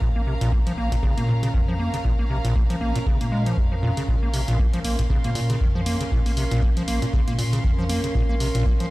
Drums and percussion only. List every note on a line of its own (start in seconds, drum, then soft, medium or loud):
0.01 kick loud
0.41 closed hi-hat medium
0.52 kick loud
0.67 closed hi-hat soft
0.92 kick medium
0.92 closed hi-hat medium
1.03 kick loud
1.18 closed hi-hat soft
1.43 closed hi-hat medium
1.54 kick loud
1.94 closed hi-hat medium
2.05 kick loud
2.45 closed hi-hat medium
2.56 kick loud
2.70 closed hi-hat soft
2.96 closed hi-hat medium
3.06 kick loud
3.21 closed hi-hat soft
3.46 closed hi-hat medium
3.57 kick loud
3.97 closed hi-hat medium
4.08 kick loud
4.34 open hi-hat loud
4.48 closed hi-hat medium
4.59 kick loud
4.73 closed hi-hat soft
4.84 open hi-hat loud
4.99 kick medium
4.99 closed hi-hat medium
5.10 kick loud
5.24 closed hi-hat soft
5.35 open hi-hat loud
5.50 closed hi-hat medium
5.61 kick loud
5.86 open hi-hat medium
6.01 closed hi-hat medium
6.12 kick loud
6.26 open hi-hat medium
6.37 open hi-hat medium
6.51 closed hi-hat medium
6.62 kick loud
6.77 closed hi-hat soft
6.88 open hi-hat loud
7.02 closed hi-hat medium
7.13 kick loud
7.28 closed hi-hat soft
7.39 open hi-hat loud
7.53 closed hi-hat medium
7.64 kick loud
7.89 open hi-hat loud
8.04 closed hi-hat medium
8.15 kick loud
8.40 open hi-hat medium
8.55 closed hi-hat medium
8.66 kick loud
8.80 closed hi-hat medium